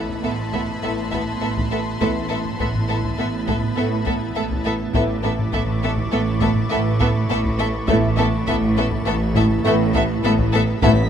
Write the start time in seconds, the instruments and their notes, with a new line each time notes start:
Already playing: double bass section A1, cello section A2, ambient pad B3 E4 A5, violin section A5 B5, impact
0.10 taiko
0.23 double bass section A1, cello section A2 A3, viola section B3, violin section A4 E5 C6
0.53 cello section A2, viola section B3, violin section A4 E5, taiko
0.69 taiko low-mid
0.81 double bass section A1, cello section A2, trombone section A2 A3, french horn section B3 E4, viola section B3, violin section A4 E5
1.11 cello section A2, viola section B3, violin section A4 E5, taiko
1.41 double bass section A1, cello section A2, viola section B3, violin section A4 E5
1.57 taiko
1.70 cello section A2, viola section B3, violin section A4 E5
1.99 double bass section A1, trombone section A2 A3, cello section A2, ambient pad B3 E4 A5, french horn section B3 E4, viola section B3, violin section A4 E5, taiko
2.28 cello section A2, viola section B3, violin section A4 E5
2.45 taiko low-mid
2.59 double bass section A1, cello section A2, viola section B3, violin section A4 E5, taiko
2.75 taiko low-mid
2.88 cello section A2, viola section B3, violin section A4 E5
3.04 taiko
3.18 double bass section A1, cello section A2 A3, viola section B3, violin section A4 E5
3.47 cello section A2, viola section B3, violin section A4 E5, taiko
3.52 violin section B5
3.63 taiko low-mid
3.76 double bass section A1, cello section A2, trombone section A2 A3, french horn section B3 E4, viola section B3, violin section A4 E5
4.05 cello section A2, viola section B3, violin section A4 E5, taiko
4.35 double bass section A1, cello section A2, viola section B3, violin section A4 E5
4.51 taiko
4.65 cello section A2, viola section B3, violin section A4 E5
4.94 double bass section A1, cello section A2, trombone section A2 A3, viola section B3, french horn section B3 E4, ambient pad E4 B4 A5, violin section A4 E5 B5 D6, taiko
5.23 cello section A2, viola section B3, violin section A4 E5
5.39 taiko low-mid
5.52 double bass section A1, cello section A2, viola section B3, violin section A4 E5 C#6, taiko
5.67 taiko low-mid
5.82 cello section A2, viola section B3, violin section A4 E5
5.97 taiko
6.11 double bass section A1, cello section A2 A3, viola section B3, violin section A4 E5
6.40 cello section A2, viola section B3, violin section A4 E5, taiko
6.56 taiko low-mid
6.70 double bass section A1, cello section A2, trombone section A2 A3, french horn section B3 E4, viola section B3, violin section A4 E5
7.00 cello section A2, viola section B3, violin section A4 E5, taiko
7.29 double bass section A1, cello section A2, viola section B3, violin section A4 E5
7.45 taiko
7.58 cello section A2, viola section B3, violin section A4 E5
7.88 double bass section A1, cello section A2, trombone section A2 A3, french horn section B3 E4, viola section B3, ambient pad E4 B4 A5, violin section A4 E5, taiko
8.17 cello section A2, viola section B3, violin section A4 E5
8.32 taiko low-mid
8.47 double bass section A1, cello section A2, viola section B3, violin section A4 E5, taiko
8.62 taiko low-mid
8.77 cello section A2, viola section B3, violin section A4 E5
8.91 taiko
9.06 double bass section A1, cello section A2 A3, viola section B3, violin section A4 E5
9.35 cello section A2, viola section B3, violin section A4 E5, taiko
9.51 taiko low-mid
9.64 double bass section A1, trombone section A2 A3, cello section A2, viola section B3, french horn section B3 E4, violin section A4 E5
9.94 cello section A2, viola section B3, violin section A4 E5, taiko
10.24 double bass section A1, cello section A2, viola section B3, violin section A4 E5
10.39 taiko
10.53 cello section A2, viola section B3, violin section A4 E5
10.82 double bass section A1, trombone section A2 A3, cello section A2, viola section B3, french horn section B3 E4, ambient pad E4 B4 A5, violin section A4 E5 B6, taiko